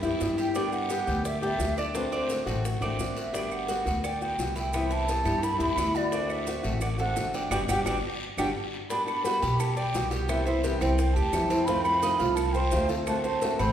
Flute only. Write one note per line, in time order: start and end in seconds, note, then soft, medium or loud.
0.38 0.74 G5 loud
0.73 1.25 F#5 loud
1.26 1.42 E5 loud
1.43 1.80 E5 loud
1.79 1.96 D5 medium
1.97 2.03 B4 medium
2.15 2.46 C5 medium
3.18 3.54 E5 medium
3.52 4.04 F#5 medium
4.05 4.21 G5 medium
4.22 4.54 G5 loud
4.58 4.94 G5 loud
4.92 5.46 A5 loud
5.44 5.60 B5 loud
5.61 5.97 B5 loud
5.96 6.32 D5 loud
6.30 6.82 E5 medium
6.83 6.89 F#5 medium
7.00 7.36 F#5 loud
7.35 7.51 G5 medium
7.51 7.63 G5 medium
7.68 7.80 G5 loud
7.87 7.98 G5 medium
8.39 8.50 G5 loud
8.90 9.06 B5 loud
9.08 9.61 B5 loud
9.60 9.75 A5 medium
9.76 10.09 G5 loud
10.28 10.44 E5 loud
10.45 10.78 E5 medium
10.80 10.96 G5 medium
10.97 11.15 G5 medium
11.14 11.67 A5 loud
11.65 11.83 B5 loud
11.84 12.37 B5 loud
12.35 12.54 A5 loud
12.53 12.89 G5 loud
13.07 13.23 A5 loud
13.24 13.57 A5 loud
13.59 13.72 B5 loud